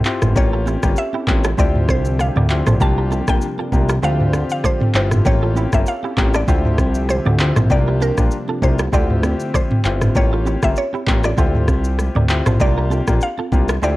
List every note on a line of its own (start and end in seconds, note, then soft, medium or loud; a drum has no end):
0.05 0.33 C4 medium
0.05 0.33 E4 medium
0.05 0.33 F4 medium
0.05 0.34 G4 medium
0.05 clap medium
0.05 shaker medium
0.22 0.34 G1 loud
0.22 cross-stick loud
0.22 mid tom loud
0.22 high conga medium
0.22 shaker medium
0.35 0.77 A1 loud
0.35 0.79 A#3 medium
0.35 0.79 C#4 medium
0.35 1.57 C#4 medium
0.35 0.79 F4 medium
0.35 1.57 G4 medium
0.35 0.79 G4 loud
0.35 2.78 A4 medium
0.35 0.99 C#5 loud
0.35 kick loud
0.35 low conga medium
0.35 shaker medium
0.53 0.61 F4 medium
0.53 0.61 A4 medium
0.66 0.77 E4 medium
0.66 0.76 G4 medium
0.66 high conga medium
0.66 shaker medium
0.83 0.95 G1 medium
0.83 0.99 A#3 medium
0.83 1.00 C#4 medium
0.83 1.00 F4 medium
0.83 1.00 G4 medium
0.83 kick medium
0.83 cross-stick loud
0.83 shaker medium
0.97 1.55 E5 loud
0.97 shaker medium
1.13 1.22 E4 medium
1.13 1.22 G4 medium
1.13 high conga medium
1.27 1.54 A1 medium
1.27 1.46 A#3 medium
1.27 1.46 C#4 medium
1.27 1.47 F4 medium
1.27 1.47 G4 medium
1.27 kick loud
1.27 clap medium
1.27 high conga medium
1.27 low conga medium
1.27 shaker soft
1.44 1.53 F4 medium
1.44 1.53 A4 medium
1.44 cross-stick loud
1.44 shaker medium
1.57 1.90 D2 loud
1.57 2.79 D3 medium
1.57 5.22 F3 medium
1.57 2.43 C4 medium
1.57 2.79 C4 medium
1.57 2.79 D4 medium
1.57 2.43 E4 medium
1.57 2.43 F4 medium
1.57 2.79 G4 medium
1.57 2.43 G4 loud
1.57 1.76 A4 medium
1.57 1.76 C5 medium
1.57 1.90 D5 loud
1.57 kick loud
1.57 low conga medium
1.57 shaker medium
1.75 mid tom medium
1.89 2.30 C2 loud
1.89 2.18 C5 loud
1.89 kick medium
1.89 cross-stick loud
1.89 high conga medium
1.89 shaker medium
2.05 shaker medium
2.19 2.83 F5 loud
2.19 cross-stick medium
2.19 low conga medium
2.19 shaker medium
2.36 2.63 D2 medium
2.36 2.45 A#4 medium
2.36 2.44 D5 medium
2.36 mid tom medium
2.36 high conga medium
2.50 2.78 C4 medium
2.50 2.78 E4 medium
2.50 2.78 F4 medium
2.50 2.79 G4 medium
2.50 clap loud
2.50 shaker medium
2.67 2.79 A#1 medium
2.67 2.76 A4 medium
2.67 2.75 C5 medium
2.67 cross-stick medium
2.67 mid tom loud
2.67 high conga medium
2.67 shaker medium
2.80 3.22 C2 loud
2.80 4.02 C3 medium
2.80 4.02 G3 medium
2.80 3.24 A#3 medium
2.80 4.02 A#3 medium
2.80 3.24 D4 medium
2.80 4.02 D4 medium
2.80 3.24 F4 medium
2.80 3.24 G4 loud
2.80 3.30 A5 loud
2.80 kick loud
2.80 low conga medium
2.80 shaker medium
2.98 3.06 G4 medium
2.98 3.06 A#4 medium
3.11 3.22 F4 medium
3.11 3.21 A4 medium
3.11 high conga medium
3.11 shaker medium
3.28 3.40 A#1 medium
3.28 3.44 A#3 medium
3.28 3.44 D4 medium
3.28 3.45 F4 medium
3.28 3.45 G4 medium
3.28 4.06 G5 loud
3.28 kick medium
3.28 cross-stick loud
3.28 shaker medium
3.41 shaker medium
3.58 3.67 F4 medium
3.58 3.67 A4 medium
3.58 high conga medium
3.72 3.99 C2 medium
3.72 3.91 A#3 medium
3.72 3.91 D4 medium
3.72 3.92 F4 medium
3.72 3.92 G4 medium
3.72 kick medium
3.72 high conga medium
3.72 low conga medium
3.72 shaker soft
3.89 3.98 G4 medium
3.89 3.97 A#4 medium
3.89 cross-stick loud
3.89 shaker medium
4.02 4.44 D2 loud
4.02 5.24 D3 medium
4.02 4.88 C4 loud
4.02 5.24 C4 medium
4.02 4.88 D4 medium
4.02 5.24 F4 medium
4.02 4.88 F4 medium
4.02 5.24 G4 medium
4.02 4.88 G4 loud
4.02 7.67 A4 medium
4.02 4.21 A4 medium
4.02 4.21 C5 medium
4.02 4.51 F5 loud
4.02 low conga medium
4.02 shaker medium
4.20 mid tom medium
4.33 cross-stick medium
4.33 high conga medium
4.33 shaker medium
4.50 4.58 F5 loud
4.50 shaker medium
4.64 4.82 A4 medium
4.64 4.93 C5 loud
4.64 4.82 D5 medium
4.64 kick medium
4.64 cross-stick medium
4.64 low conga medium
4.64 shaker medium
4.81 mid tom medium
4.81 high conga medium
4.95 5.21 G1 medium
4.95 5.23 C4 medium
4.95 5.23 E4 medium
4.95 5.23 F4 medium
4.95 5.23 G4 medium
4.95 5.27 C5 loud
4.95 clap medium
4.95 shaker medium
5.12 cross-stick medium
5.12 mid tom loud
5.12 high conga medium
5.12 shaker medium
5.25 5.67 A1 loud
5.25 5.69 A#3 loud
5.25 5.69 C#4 medium
5.25 6.47 C#4 medium
5.25 5.69 F4 medium
5.25 7.68 G4 medium
5.25 5.69 G4 loud
5.25 5.70 C#5 loud
5.25 kick loud
5.25 low conga medium
5.25 shaker medium
5.43 5.51 F4 medium
5.43 5.50 A4 medium
5.56 5.67 E4 medium
5.56 5.66 G4 medium
5.56 high conga medium
5.56 shaker medium
5.73 5.85 G1 loud
5.73 5.89 A#3 medium
5.73 5.89 C#4 medium
5.73 5.89 F4 medium
5.73 5.90 G4 medium
5.73 5.80 E5 medium
5.73 kick loud
5.73 cross-stick medium
5.73 shaker medium
5.86 6.32 F5 loud
5.86 shaker medium
6.03 6.12 E4 medium
6.03 6.12 G4 medium
6.03 high conga medium
6.17 6.44 A1 loud
6.17 6.36 A#3 medium
6.17 6.36 C#4 medium
6.17 6.36 F4 medium
6.17 6.37 G4 medium
6.17 kick medium
6.17 clap medium
6.17 high conga medium
6.17 low conga medium
6.17 shaker soft
6.34 6.43 F4 medium
6.34 6.42 A4 medium
6.34 7.06 D5 medium
6.34 cross-stick loud
6.34 shaker medium
6.47 6.80 D2 loud
6.47 7.69 D3 medium
6.47 10.12 F3 medium
6.47 7.33 C4 loud
6.47 7.69 C4 medium
6.47 7.33 E4 medium
6.47 7.33 F4 medium
6.47 7.33 G4 loud
6.47 6.66 A4 medium
6.47 6.66 C5 medium
6.47 7.69 E5 medium
6.47 kick loud
6.47 low conga medium
6.47 shaker medium
6.65 mid tom medium
6.78 7.20 C2 loud
6.78 kick medium
6.78 cross-stick loud
6.78 high conga medium
6.78 shaker medium
6.95 shaker medium
7.09 7.73 C5 loud
7.09 cross-stick medium
7.09 low conga medium
7.09 shaker medium
7.25 7.53 D2 medium
7.25 7.35 A#4 medium
7.25 7.34 D5 medium
7.25 mid tom loud
7.25 high conga medium
7.39 7.68 C4 medium
7.39 7.68 E4 medium
7.39 7.68 F4 medium
7.39 7.68 G4 medium
7.39 clap loud
7.39 shaker medium
7.56 7.68 A#1 medium
7.56 7.65 A4 medium
7.56 7.65 C5 medium
7.56 cross-stick medium
7.56 mid tom loud
7.56 high conga medium
7.56 shaker medium
7.70 8.12 C2 loud
7.70 8.92 C3 medium
7.70 8.92 G3 medium
7.70 8.14 A#3 medium
7.70 8.92 A#3 medium
7.70 8.14 D4 medium
7.70 8.92 D4 medium
7.70 8.14 F4 medium
7.70 8.14 G4 loud
7.70 8.02 D5 loud
7.70 kick loud
7.70 low conga medium
7.70 shaker medium
7.88 7.96 G4 medium
7.88 7.95 A#4 medium
8.01 8.11 F4 medium
8.01 8.11 A4 medium
8.01 8.65 A#4 medium
8.01 high conga medium
8.01 shaker medium
8.17 8.30 A#1 medium
8.17 8.34 A#3 medium
8.17 8.34 D4 medium
8.17 8.34 F4 medium
8.17 8.34 G4 medium
8.17 kick medium
8.17 cross-stick medium
8.17 shaker medium
8.31 shaker medium
8.48 8.57 F4 medium
8.48 8.57 A4 medium
8.48 high conga medium
8.62 8.89 C2 loud
8.62 8.81 A#3 medium
8.62 8.81 D4 medium
8.62 8.81 F4 medium
8.62 8.81 G4 medium
8.62 8.94 C5 medium
8.62 kick medium
8.62 high conga medium
8.62 low conga medium
8.62 shaker soft
8.79 8.88 G4 medium
8.79 8.87 A#4 medium
8.79 cross-stick loud
8.79 shaker medium
8.92 9.34 D2 loud
8.92 10.14 D3 medium
8.92 10.14 A3 medium
8.92 9.78 C4 medium
8.92 10.14 C4 medium
8.92 9.78 E4 medium
8.92 9.78 F4 medium
8.92 10.14 G4 medium
8.92 9.78 G4 loud
8.92 9.11 A4 medium
8.92 9.10 C5 medium
8.92 9.81 D5 medium
8.92 10.14 E5 medium
8.92 kick loud
8.92 low conga medium
8.92 shaker medium
9.10 mid tom medium
9.23 cross-stick loud
9.23 high conga medium
9.23 shaker medium
9.40 shaker medium
9.54 9.72 A4 medium
9.54 10.18 C5 medium
9.54 9.72 D5 medium
9.54 kick medium
9.54 cross-stick medium
9.54 low conga medium
9.54 shaker medium
9.70 mid tom medium
9.70 high conga medium
9.84 10.11 G1 medium
9.84 10.13 C4 medium
9.84 10.13 E4 medium
9.84 10.13 F4 medium
9.84 10.13 G4 medium
9.84 clap loud
9.84 shaker medium
10.01 cross-stick loud
10.01 mid tom loud
10.01 high conga medium
10.01 shaker medium
10.15 10.56 A1 loud
10.15 10.59 A#3 medium
10.15 10.59 C#4 medium
10.15 10.59 F4 medium
10.15 10.59 G4 loud
10.15 10.60 C#5 loud
10.15 kick loud
10.15 low conga medium
10.15 shaker medium
10.33 10.41 F4 medium
10.33 10.40 A4 medium
10.45 10.56 E4 medium
10.45 10.56 G4 medium
10.45 high conga medium
10.45 shaker medium
10.62 10.75 G1 medium
10.62 10.79 A#3 medium
10.62 10.79 C#4 medium
10.62 10.79 F4 medium
10.62 10.79 G4 medium
10.62 10.70 E5 loud
10.62 kick medium
10.62 cross-stick medium
10.62 shaker medium
10.76 11.21 C#5 loud
10.76 shaker medium
10.93 11.02 E4 medium
10.93 11.01 G4 medium
10.93 high conga medium
11.07 11.34 A1 loud
11.07 11.26 A#3 medium
11.07 11.26 C#4 medium
11.07 11.26 F4 medium
11.07 11.26 G4 medium
11.07 kick loud
11.07 clap medium
11.07 high conga medium
11.07 low conga medium
11.07 shaker soft
11.24 11.33 F4 medium
11.24 11.32 A4 medium
11.24 12.26 D5 medium
11.24 cross-stick loud
11.24 shaker medium
11.37 11.70 D2 loud
11.37 12.23 C4 medium
11.37 12.23 E4 medium
11.37 12.23 F4 medium
11.37 12.23 G4 loud
11.37 11.56 A4 medium
11.37 11.55 C5 medium
11.37 kick loud
11.37 low conga medium
11.37 shaker medium
11.55 mid tom medium
11.68 12.10 C2 loud
11.68 kick medium
11.68 cross-stick medium
11.68 high conga medium
11.68 shaker medium
11.85 shaker medium
11.99 cross-stick medium
11.99 low conga medium
11.99 shaker medium
12.15 12.42 D2 medium
12.15 12.24 A#4 medium
12.15 12.24 D5 medium
12.15 mid tom loud
12.15 high conga medium
12.29 12.58 C4 medium
12.29 12.58 E4 medium
12.29 12.58 F4 medium
12.29 12.58 G4 medium
12.29 clap loud
12.29 shaker medium
12.46 12.58 A#1 medium
12.46 12.55 A4 medium
12.46 12.54 C5 medium
12.46 cross-stick loud
12.46 mid tom loud
12.46 high conga medium
12.46 shaker medium
12.60 13.01 C2 loud
12.60 13.03 A#3 medium
12.60 13.04 D4 medium
12.60 13.04 F4 medium
12.60 13.04 G4 loud
12.60 13.24 D5 loud
12.60 kick loud
12.60 low conga medium
12.60 shaker medium
12.78 12.86 G4 medium
12.78 12.85 A#4 medium
12.90 13.01 F4 medium
12.90 13.01 A4 medium
12.90 high conga medium
12.90 shaker medium
13.07 13.19 A#1 medium
13.07 13.24 A#3 medium
13.07 13.24 D4 medium
13.07 13.24 F4 medium
13.07 13.24 G4 medium
13.07 kick medium
13.07 cross-stick loud
13.07 shaker medium
13.21 13.79 F5 loud
13.21 shaker medium
13.38 13.47 F4 medium
13.38 13.46 A4 medium
13.38 high conga medium
13.52 13.79 C2 loud
13.52 13.71 A#3 medium
13.52 13.71 D4 medium
13.52 13.71 F4 medium
13.52 13.71 G4 medium
13.52 kick medium
13.52 high conga medium
13.52 low conga medium
13.52 shaker soft
13.69 13.78 G4 medium
13.69 13.77 A#4 medium
13.69 cross-stick loud
13.69 shaker medium
13.82 13.97 D2 loud
13.82 13.97 C4 medium
13.82 13.97 E4 medium
13.82 13.97 F4 medium
13.82 13.97 G4 loud
13.82 13.97 A4 medium
13.82 13.97 C5 medium
13.82 13.97 D5 loud
13.82 low conga medium
13.82 shaker medium